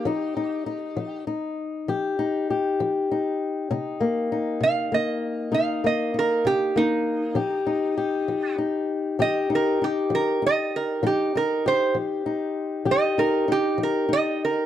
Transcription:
<<
  \new Staff \with { instrumentName = "Resonator guitar played with a steel bar" } { \time 12/8 \key f \dorian \tempo 4. = 65 g'2 r1 | r4. f''8 ees''4 f''8 ees''8 bes'8 g'8 ees'4~ | ees'2 r4 ees''8 bes'8 g'8 bes'8 ees''8 bes'8 | g'8 bes'8 c''8 r4. ees''8 bes'8 g'8 bes'8 ees''8 bes'8 | }
  \new Staff \with { instrumentName = "Steel-string acoustic guitar" } { \time 12/8 \key f \dorian << { ees'8 ees'8 ees'4 ees'4 g'8 ees'8 g'4 ees'4 | ees'8 bes8 ees'4 bes4 ees'8 bes8 ees'4 bes4 | g'8 ees'8 g'4 ees'4 g'8 ees'8 ees'4 ees'4 | ees'8 ees'8 g'4 ees'4 g'8 ees'8 ees'4 ees'4 | } \\ { f4 r8 f4 r8 f4 r8 f4 r8 | c4 r8 c4 r8 c4 r8 c4 r8 | f4 r8 f4 r8 f4 r8 f4 r8 | f4 r8 f4 r8 f4 r8 f4 r8 | } >> }
>>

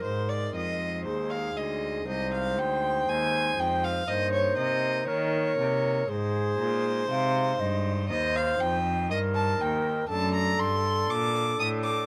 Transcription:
<<
  \new Staff \with { instrumentName = "Violin" } { \time 4/4 \key aes \lydian \tempo 4 = 60 c''16 d''16 ees''8 c''16 f''16 ees''8 ees''16 f''16 g''8 aes''8 g''16 f''16 | ees''16 des''16 ees''8 des''4 c''2 | \key c \dorian ees''16 f''16 g''8 ees''16 a''16 g''8 a''16 bes''16 c'''8 d'''8 ees'''16 d'''16 | }
  \new Staff \with { instrumentName = "Flute" } { \time 4/4 \key aes \lydian bes'8 r8 aes'4 c''2 | c''4 bes'4 aes'4 f''8 ees''8 | \key c \dorian c''4 bes'4 a'2 | }
  \new Staff \with { instrumentName = "Pipe organ" } { \time 4/4 \key aes \lydian <aes ees' c''>1 | <bes ees' bes'>2 <aes ees' c''>2 | \key c \dorian <ees' c''>2 <a d' d''>2 | }
  \new Staff \with { instrumentName = "Pipe organ" } { \clef bass \time 4/4 \key aes \lydian aes,8 f,8 ees,8 d,8 c,8 d,8 ees,8 f,8 | g,8 c8 ees8 c8 aes,8 bes,8 c8 g,8 | \key c \dorian ees,8 f,8 g,8 ees,8 fis,8 g,8 bes,8 a,8 | }
  \new Staff \with { instrumentName = "Cello" } { \clef bass \time 4/4 \key aes \lydian aes,8 f,8 ees,8 d,8 c,8 d,8 ees,8 f,8 | g,8 c8 ees8 c8 aes,8 bes,8 c8 g,8 | \key c \dorian ees,8 f,8 g,8 ees,8 fis,8 g,8 bes,8 a,8 | }
>>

